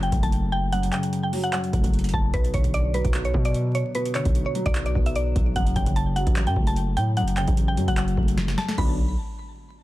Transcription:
0.00 0.11 F#1 loud
0.00 0.73 F#2 medium
0.00 0.32 C#3 medium
0.00 0.73 F#3 medium
0.00 0.21 G5 medium
0.00 closed hi-hat medium
0.12 0.22 F#1 loud
0.12 1.13 A3 medium
0.12 kick loud
0.12 closed hi-hat medium
0.23 0.90 F#1 loud
0.23 0.51 A5 medium
0.23 kick loud
0.23 closed hi-hat medium
0.32 closed hi-hat medium
0.52 0.71 G5 loud
0.72 1.52 F#2 medium
0.72 0.91 F#5 loud
0.72 closed hi-hat medium
0.83 closed hi-hat medium
0.92 1.93 C#3 medium
0.92 1.22 G5 medium
0.92 clap medium
0.92 closed hi-hat medium
1.03 closed hi-hat medium
1.13 closed hi-hat medium
1.23 1.42 G5 medium
1.33 2.34 F#3 loud
1.33 open hi-hat medium
1.44 1.52 F#5 medium
1.44 closed hi-hat medium
1.53 2.34 F#2 medium
1.53 2.10 F#5 medium
1.53 clap loud
1.53 closed hi-hat medium
1.64 closed hi-hat medium
1.73 1.83 F#1 loud
1.73 2.34 A3 medium
1.73 kick loud
1.73 closed hi-hat medium
1.84 2.12 F#1 loud
1.84 kick loud
1.84 closed hi-hat medium
1.93 closed hi-hat soft
1.99 closed hi-hat medium
2.04 closed hi-hat medium
2.09 closed hi-hat medium
2.13 2.33 F#1 loud
2.13 2.32 A5 medium
2.13 kick medium
2.34 2.53 B1 loud
2.34 3.13 B2 medium
2.34 2.52 B4 medium
2.34 kick loud
2.34 closed hi-hat medium
2.44 closed hi-hat medium
2.54 3.03 B1 loud
2.54 3.55 D3 medium
2.54 2.73 C#5 medium
2.54 kick medium
2.54 closed hi-hat medium
2.64 kick medium
2.64 closed hi-hat medium
2.74 2.93 D5 loud
2.74 closed hi-hat medium
2.94 3.95 F#3 medium
2.94 3.23 B4 medium
2.94 closed hi-hat medium
3.05 3.33 B1 loud
3.05 kick medium
3.05 closed hi-hat medium
3.14 3.93 B2 medium
3.14 clap loud
3.14 closed hi-hat medium
3.25 3.44 C#5 medium
3.25 closed hi-hat soft
3.34 3.83 B2 loud
3.34 4.35 B3 medium
3.34 kick medium
3.45 3.73 D5 medium
3.45 closed hi-hat medium
3.54 closed hi-hat medium
3.75 3.93 C#5 medium
3.75 closed hi-hat medium
3.95 4.74 B2 medium
3.95 4.14 B4 medium
3.95 closed hi-hat medium
4.05 closed hi-hat medium
4.15 5.16 D3 medium
4.15 4.44 C#5 medium
4.15 clap medium
4.15 closed hi-hat medium
4.25 4.45 B1 loud
4.25 kick loud
4.25 closed hi-hat medium
4.35 closed hi-hat medium
4.46 4.64 C#5 medium
4.55 5.56 F#3 loud
4.55 closed hi-hat medium
4.66 4.94 B1 loud
4.66 4.85 D5 medium
4.66 kick loud
4.66 closed hi-hat medium
4.75 5.56 B2 medium
4.75 clap loud
4.75 closed hi-hat medium
4.86 5.05 D5 medium
4.86 closed hi-hat medium
4.95 5.34 B1 loud
4.95 5.56 B3 medium
4.95 kick medium
5.06 5.15 E5 medium
5.06 closed hi-hat medium
5.16 5.53 D5 medium
5.16 closed hi-hat medium
5.36 5.55 B1 loud
5.36 kick loud
5.36 closed hi-hat medium
5.56 5.75 F#1 loud
5.56 6.35 F#2 medium
5.56 5.74 F#5 loud
5.56 kick loud
5.56 closed hi-hat medium
5.66 closed hi-hat medium
5.76 5.86 F#1 loud
5.76 6.77 C#3 medium
5.76 5.95 G5 medium
5.76 kick loud
5.76 closed hi-hat medium
5.86 6.25 F#1 loud
5.86 kick loud
5.86 closed hi-hat medium
5.96 6.15 A5 medium
5.96 closed hi-hat medium
6.16 7.17 F#3 medium
6.16 6.45 F#5 medium
6.16 closed hi-hat medium
6.27 6.48 A1 loud
6.27 kick medium
6.27 closed hi-hat medium
6.36 7.16 F#2 medium
6.36 clap loud
6.36 closed hi-hat medium
6.47 6.56 F#2 loud
6.47 6.66 G5 medium
6.47 closed hi-hat medium
6.56 6.98 F#1 loud
6.56 7.57 A3 medium
6.56 kick medium
6.67 6.95 A5 medium
6.67 closed hi-hat medium
6.76 closed hi-hat medium
6.97 7.24 A2 loud
6.97 7.15 G5 loud
6.97 closed hi-hat medium
7.17 7.96 F#2 medium
7.17 7.36 F#5 medium
7.17 closed hi-hat medium
7.22 7.46 F#1 loud
7.28 closed hi-hat medium
7.37 8.38 C#3 medium
7.37 7.66 G5 medium
7.37 clap medium
7.37 closed hi-hat medium
7.47 7.79 A1 loud
7.47 kick loud
7.47 closed hi-hat medium
7.57 closed hi-hat medium
7.68 7.87 G5 medium
7.77 7.87 F#2 loud
7.77 8.77 F#3 loud
7.77 closed hi-hat medium
7.88 8.16 F#1 loud
7.88 7.96 F#5 medium
7.88 kick medium
7.88 closed hi-hat medium
7.97 8.78 F#2 medium
7.97 8.54 F#5 medium
7.97 clap loud
7.97 closed hi-hat medium
8.08 closed hi-hat soft
8.17 8.56 F#1 loud
8.17 8.78 A3 medium
8.17 kick loud
8.28 closed hi-hat medium
8.38 snare medium
8.38 closed hi-hat medium
8.48 snare medium
8.58 8.77 A5 medium
8.58 snare loud
8.58 closed hi-hat soft
8.69 snare loud
8.69 closed hi-hat medium
8.78 9.15 B1 loud
8.78 8.97 D3 medium
8.78 8.97 F#3 medium
8.78 8.97 B3 medium
8.78 8.97 D4 loud
8.78 8.97 B5 medium
8.78 kick loud
8.78 crash medium

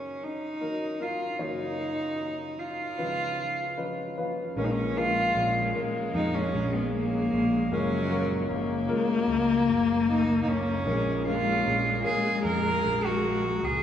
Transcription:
0.00 1.36 F#1 medium
0.00 1.37 F#2 medium
0.00 0.61 F#3 medium
0.00 0.25 C#4 medium
0.00 0.61 D#4 medium
0.00 0.61 A#4 medium
0.23 1.03 D#4 medium
0.61 0.97 F#3 medium
0.61 0.97 D#4 medium
0.61 0.97 A#4 medium
1.00 1.37 F#3 medium
1.00 1.37 D#4 soft
1.00 1.42 F4 medium
1.00 1.37 A#4 medium
1.39 2.94 F#1 soft
1.39 2.94 F#2 soft
1.39 2.85 F#3 medium
1.39 2.85 D#4 medium
1.39 2.61 D#4 loud
1.39 2.85 C#5 medium
2.59 4.17 F4 medium
2.98 4.53 C#2 soft
2.98 4.53 C#3 soft
2.98 3.71 F3 medium
2.98 3.71 C#4 medium
2.98 3.71 B4 medium
3.77 4.14 F3 medium
3.77 4.14 C#4 medium
3.77 4.14 B4 medium
3.77 4.14 D#5 medium
4.17 4.54 F3 medium
4.17 4.53 C#4 medium
4.17 4.54 B4 medium
4.17 4.54 F5 medium
4.56 5.31 A#1 medium
4.56 7.68 A#1 medium
4.56 7.69 A#2 medium
4.56 7.74 G#3 medium
4.56 4.93 G#3 medium
4.56 4.93 C#4 medium
4.56 4.66 C#4 medium
4.56 4.93 A#4 medium
4.64 4.73 D#4 medium
4.71 4.99 C#4 medium
4.97 5.69 G#3 medium
4.97 5.69 C#4 medium
4.97 5.76 F4 loud
4.97 5.69 A#4 medium
5.35 5.72 A#1 medium
5.74 7.19 G#3 medium
5.74 7.19 C#4 medium
5.74 7.19 A#4 medium
6.14 6.51 F2 medium
6.14 6.36 D#4 medium
6.34 6.75 C#4 medium
6.53 7.28 A#1 loud
6.74 6.94 B3 medium
6.94 7.74 A#3 loud
7.32 7.69 A#1 medium
7.71 8.46 F#1 medium
7.71 10.83 F#1 medium
7.71 10.83 F#2 medium
7.71 8.50 F#3 loud
7.71 8.08 G#3 medium
7.71 8.51 C#4 loud
7.71 8.08 F4 medium
7.71 8.08 A#4 medium
8.10 8.83 G#3 medium
8.10 8.83 F4 medium
8.10 8.83 A#4 medium
8.50 8.87 F#1 medium
8.50 10.83 A#3 loud
8.89 10.34 G#3 medium
8.89 10.34 F4 medium
8.89 10.34 A#4 medium
9.28 9.65 C#2 medium
9.68 10.43 F#1 loud
10.09 10.39 D#4 medium
10.41 10.49 D#4 medium
10.47 10.84 F#1 medium
10.47 11.27 C#4 loud
10.85 11.61 A#1 loud
10.85 13.83 A#1 medium
10.85 13.83 A#2 medium
10.85 13.83 G#3 loud
10.85 11.23 G#3 medium
10.85 11.23 C#4 medium
10.85 11.23 A#4 medium
11.26 11.99 G#3 medium
11.26 11.99 C#4 medium
11.26 12.02 F4 loud
11.26 11.99 A#4 medium
11.66 12.03 A#1 medium
12.04 13.49 G#3 medium
12.04 13.49 C#4 medium
12.04 12.42 G#4 medium
12.04 13.49 A#4 medium
12.44 12.81 F2 medium
12.44 13.06 A#4 loud
12.84 13.59 A#1 medium
13.05 13.66 F#4 medium
13.62 13.83 C#2 medium
13.62 13.83 G#4 medium

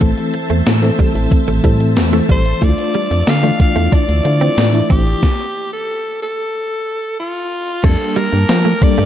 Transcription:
0.00 0.13 A1 loud
0.00 0.82 E3 medium
0.00 0.82 A3 medium
0.00 0.12 A3 medium
0.00 0.83 C4 medium
0.00 0.01 A4 medium
0.00 0.61 A4 loud
0.00 2.58 C5 medium
0.00 2.58 E5 medium
0.00 5.19 A5 medium
0.00 5.19 E6 medium
0.00 kick loud
0.00 closed hi-hat medium
0.17 closed hi-hat medium
0.34 muted clean electric guitar stroke soft
0.34 closed hi-hat medium
0.50 0.62 E2 medium
0.50 0.61 A3 medium
0.50 closed hi-hat soft
0.67 0.91 A2 loud
0.67 snare loud
0.67 closed hi-hat medium
0.82 1.06 E3 medium
0.82 1.06 A3 medium
0.82 1.06 C4 medium
0.82 1.07 A4 loud
0.82 closed hi-hat medium
0.99 1.10 G3 medium
0.99 kick loud
0.99 closed hi-hat medium
1.14 1.28 A1 medium
1.14 1.50 E3 medium
1.14 1.51 A3 medium
1.14 1.51 C4 medium
1.14 1.51 A4 medium
1.14 closed hi-hat soft
1.31 muted clean electric guitar stroke soft
1.31 kick loud
1.31 closed hi-hat medium
1.48 1.60 A1 loud
1.48 1.59 A3 medium
1.48 closed hi-hat medium
1.63 1.98 A2 loud
1.63 1.99 E3 medium
1.63 1.76 G3 medium
1.63 2.00 A3 medium
1.63 2.00 C4 medium
1.63 2.00 A4 loud
1.63 kick medium
1.63 closed hi-hat medium
1.80 closed hi-hat medium
1.97 2.21 E2 medium
1.97 muted clean electric guitar stroke soft
1.97 snare loud
1.97 closed hi-hat medium
2.12 2.48 E3 medium
2.12 2.49 A3 medium
2.12 2.24 A3 medium
2.12 2.49 C4 medium
2.12 2.49 A4 medium
2.12 closed hi-hat medium
2.29 2.54 A1 medium
2.29 2.41 G3 medium
2.29 2.65 C5 loud
2.29 kick loud
2.29 closed hi-hat medium
2.46 closed hi-hat soft
2.61 2.74 D2 loud
2.61 3.21 A3 medium
2.61 2.73 A3 medium
2.61 3.21 D4 medium
2.61 2.69 E4 medium
2.61 5.21 D5 medium
2.61 3.31 D5 loud
2.61 kick loud
2.61 closed hi-hat medium
2.69 3.25 F4 medium
2.78 closed hi-hat medium
2.94 3.06 G3 medium
2.94 closed hi-hat medium
3.11 3.23 F2 medium
3.11 muted clean electric guitar stroke soft
3.11 closed hi-hat soft
3.27 3.52 D3 loud
3.27 3.61 F5 loud
3.27 snare loud
3.27 closed hi-hat medium
3.43 3.67 E3 medium
3.43 3.55 A3 medium
3.43 3.67 A3 medium
3.43 3.67 D4 medium
3.43 3.68 F4 medium
3.43 closed hi-hat medium
3.60 3.91 F5 loud
3.60 muted clean electric guitar stroke soft
3.60 kick loud
3.60 closed hi-hat medium
3.75 3.88 E2 medium
3.75 3.87 A3 medium
3.75 4.12 A3 medium
3.75 4.12 D4 medium
3.75 4.11 E4 medium
3.75 4.12 F4 medium
3.75 closed hi-hat soft
3.92 4.04 D4 medium
3.92 4.87 D5 loud
3.92 kick loud
3.92 closed hi-hat medium
4.09 4.21 D2 loud
4.09 closed hi-hat medium
4.24 4.49 D3 loud
4.24 4.60 A3 medium
4.24 4.61 D4 medium
4.24 4.60 E4 medium
4.24 4.61 F4 medium
4.24 muted clean electric guitar stroke soft
4.24 closed hi-hat medium
4.41 4.53 C4 medium
4.41 closed hi-hat medium
4.57 4.82 A2 medium
4.57 snare loud
4.57 closed hi-hat medium
4.73 5.09 E3 medium
4.73 5.09 A3 medium
4.73 5.10 D4 medium
4.73 5.10 E4 medium
4.73 closed hi-hat medium
4.90 5.15 A1 medium
4.90 5.01 C4 medium
4.90 5.68 G4 loud
4.90 kick medium
4.90 closed hi-hat medium
5.07 closed hi-hat soft
5.23 kick loud
5.23 snare medium
5.73 6.18 A4 medium
6.22 7.15 A4 medium
7.20 7.86 F4 medium
7.83 7.96 F2 loud
7.83 8.55 G3 medium
7.83 7.95 A3 medium
7.83 8.55 A#3 medium
7.83 9.05 A#3 medium
7.83 8.55 D4 medium
7.83 8.19 A4 loud
7.83 9.05 G5 medium
7.83 9.05 A5 medium
7.83 8.55 A5 medium
7.83 9.05 D6 medium
7.83 kick loud
7.83 closed hi-hat medium
7.83 crash loud
8.16 8.28 G3 medium
8.16 8.84 A#4 loud
8.16 closed hi-hat medium
8.33 8.45 G2 medium
8.33 muted clean electric guitar stroke soft
8.49 8.74 F3 loud
8.49 snare loud
8.49 closed hi-hat medium
8.49 tambourine medium
8.65 8.76 A3 medium
8.81 9.05 G3 medium
8.81 9.05 A#3 medium
8.81 9.05 D4 medium
8.81 9.05 A4 medium
8.81 9.05 D5 loud
8.81 muted clean electric guitar stroke soft
8.81 kick medium
8.81 closed hi-hat medium
8.98 9.05 G2 medium
8.98 9.05 A3 medium

